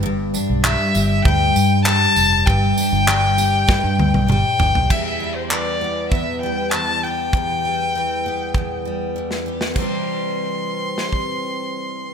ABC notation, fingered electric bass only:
X:1
M:4/4
L:1/16
Q:1/4=99
K:Ephr
V:1 name="Fingered electric bass" clef=bass
G,,,3 B,,,2 z G,,,2 D,,2 G,,4 F,,,2 | G,,,2 z G,,,4- G,,, z G,, D,, B,,, G,,, z G,,, B,,, | z16 | z16 |
z16 |]